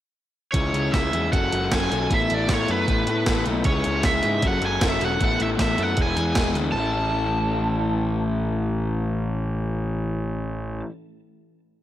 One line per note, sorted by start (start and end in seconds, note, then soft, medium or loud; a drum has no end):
0.52 0.70 C#2 medium
0.52 0.93 C#3 medium
0.52 0.91 G#3 medium
0.52 0.75 C#4 medium
0.52 0.74 E4 medium
0.52 0.93 C#5 medium
0.52 kick medium
0.52 closed hi-hat medium
0.56 0.71 G#4 medium
0.72 0.89 C#2 medium
0.72 0.93 E4 medium
0.72 0.95 G#4 medium
0.72 closed hi-hat medium
0.77 0.92 C#4 soft
0.92 1.09 C#2 medium
0.92 1.14 G#3 medium
0.92 1.12 C#4 medium
0.92 1.12 E4 medium
0.92 1.11 G#4 medium
0.92 1.29 E5 medium
0.92 kick medium
0.92 snare medium
0.92 closed hi-hat medium
1.12 1.29 E2 medium
1.12 1.32 C#3 medium
1.12 1.32 G#3 medium
1.12 1.31 C#4 medium
1.12 1.31 E4 medium
1.12 1.31 G#4 medium
1.12 closed hi-hat medium
1.32 1.49 F#1 medium
1.32 1.70 F#3 medium
1.32 1.54 C#4 medium
1.32 1.52 F#4 medium
1.32 1.49 A4 medium
1.32 1.72 F#5 medium
1.32 kick medium
1.32 closed hi-hat medium
1.51 1.68 F#1 medium
1.51 1.72 F#4 medium
1.51 1.73 A4 medium
1.51 closed hi-hat medium
1.55 1.71 C#4 medium
1.71 1.87 F#1 medium
1.71 2.09 F#3 medium
1.71 1.93 C#4 medium
1.71 1.91 F#4 medium
1.71 1.89 A4 medium
1.71 2.12 G#5 medium
1.71 kick medium
1.71 snare loud
1.71 closed hi-hat medium
1.90 2.07 B1 medium
1.90 2.10 C#4 medium
1.90 2.10 F#4 medium
1.90 2.09 A4 medium
1.90 closed hi-hat medium
2.10 2.26 A1 medium
2.10 2.48 A3 medium
2.10 2.33 B3 medium
2.10 2.32 E4 medium
2.10 2.29 A4 medium
2.10 kick medium
2.10 closed hi-hat medium
2.14 2.34 E5 medium
2.30 2.46 A1 medium
2.30 2.50 E4 medium
2.30 2.52 A4 medium
2.30 closed hi-hat medium
2.34 2.49 B3 medium
2.34 2.51 D5 medium
2.48 2.65 A1 medium
2.48 2.72 A3 medium
2.48 2.71 B3 medium
2.48 2.70 E4 medium
2.48 kick medium
2.48 snare loud
2.48 closed hi-hat medium
2.53 2.69 A4 medium
2.53 2.70 C#5 medium
2.68 2.85 F#2 medium
2.68 2.89 B3 medium
2.68 2.90 E4 medium
2.68 2.91 A4 medium
2.68 3.43 B4 medium
2.68 closed hi-hat soft
2.73 2.88 A3 medium
2.88 3.04 A1 medium
2.88 3.26 A3 medium
2.88 3.11 B3 medium
2.88 3.10 E4 medium
2.88 kick medium
2.88 closed hi-hat medium
2.93 3.08 A4 medium
3.07 3.23 A2 medium
3.07 3.29 E4 medium
3.07 3.30 A4 medium
3.07 closed hi-hat medium
3.12 3.28 B3 medium
3.26 3.43 A1 medium
3.26 3.65 A3 medium
3.26 3.50 B3 medium
3.26 3.48 E4 medium
3.26 kick medium
3.26 snare loud
3.26 closed hi-hat medium
3.31 3.46 A4 medium
3.46 3.62 B1 medium
3.46 3.66 E4 medium
3.46 3.65 A4 medium
3.46 closed hi-hat soft
3.51 3.67 B3 medium
3.64 3.81 C#2 medium
3.64 4.04 C#3 medium
3.64 4.03 G#3 medium
3.64 3.87 C#4 medium
3.64 4.05 C#5 medium
3.64 kick medium
3.64 closed hi-hat medium
3.69 3.86 E4 medium
3.69 3.84 G#4 medium
3.84 4.02 C#2 medium
3.84 4.06 E4 medium
3.84 4.07 G#4 medium
3.84 closed hi-hat medium
3.89 4.04 C#4 soft
4.03 4.20 C#2 medium
4.03 4.25 G#3 medium
4.03 4.24 C#4 medium
4.03 4.23 E4 medium
4.03 4.45 E5 medium
4.03 kick loud
4.03 snare medium
4.03 closed hi-hat medium
4.08 4.22 G#4 medium
4.23 4.44 G#2 medium
4.23 4.43 C#3 medium
4.23 4.42 G#3 medium
4.23 4.42 C#4 medium
4.23 4.42 E4 medium
4.23 4.41 G#4 medium
4.23 closed hi-hat soft
4.42 4.59 F#1 medium
4.42 4.80 F#3 medium
4.42 4.65 C#4 medium
4.42 4.63 F#4 medium
4.42 4.61 A4 medium
4.42 kick medium
4.42 closed hi-hat medium
4.48 4.65 F#5 medium
4.62 4.78 F#1 medium
4.62 4.84 F#4 medium
4.62 4.84 A4 medium
4.62 closed hi-hat medium
4.66 4.82 C#4 medium
4.66 4.84 G#5 medium
4.81 4.97 F#1 medium
4.81 5.19 F#3 medium
4.81 5.03 C#4 medium
4.81 5.01 F#4 medium
4.81 kick loud
4.81 snare loud
4.81 closed hi-hat medium
4.85 4.99 A4 medium
4.85 5.03 E5 medium
5.01 5.17 E1 medium
5.01 5.20 C#4 medium
5.01 5.20 F#4 medium
5.01 5.19 A4 medium
5.01 closed hi-hat medium
5.05 5.23 F#5 medium
5.20 5.36 A1 medium
5.20 5.56 A3 medium
5.20 5.41 B3 medium
5.20 5.39 E4 medium
5.20 5.37 A4 medium
5.20 kick loud
5.20 closed hi-hat medium
5.24 5.42 F#5 medium
5.38 5.56 A1 medium
5.38 5.58 E4 medium
5.38 5.60 A4 medium
5.38 closed hi-hat medium
5.42 5.58 B3 soft
5.42 5.48 E5 medium
5.57 5.75 A1 medium
5.57 5.80 A3 medium
5.57 5.79 B3 medium
5.57 5.78 E4 medium
5.57 kick medium
5.57 snare medium
5.57 closed hi-hat medium
5.61 5.77 A4 medium
5.61 5.83 E5 medium
5.78 5.94 F#2 medium
5.78 5.97 A3 soft
5.78 5.97 B3 medium
5.78 5.97 E4 medium
5.78 5.96 A4 medium
5.78 closed hi-hat soft
5.83 6.00 F#5 medium
5.97 6.13 E1 medium
5.97 6.36 E3 medium
5.97 6.36 G#3 medium
5.97 6.19 B3 medium
5.97 6.18 E4 medium
5.97 6.16 G#4 medium
5.97 kick medium
5.97 closed hi-hat medium
6.02 6.54 G#5 medium
6.17 6.33 E2 medium
6.17 6.37 B3 medium
6.17 6.38 E4 medium
6.17 6.40 G#4 medium
6.17 closed hi-hat medium
6.35 6.52 E1 medium
6.35 6.74 E3 medium
6.35 6.75 G#3 medium
6.35 6.58 B3 medium
6.35 6.56 E4 medium
6.35 kick loud
6.35 snare medium
6.35 closed hi-hat medium
6.41 6.54 G#4 medium
6.54 6.71 D2 medium
6.54 6.74 E4 medium
6.54 6.73 G#4 medium
6.54 closed hi-hat soft
6.59 6.75 B3 medium
6.72 10.81 A1 medium
6.72 10.87 A2 medium
6.72 10.80 A5 medium
6.76 10.88 E3 medium
6.76 10.90 A3 medium
6.76 10.91 C#4 medium
6.76 10.92 E4 medium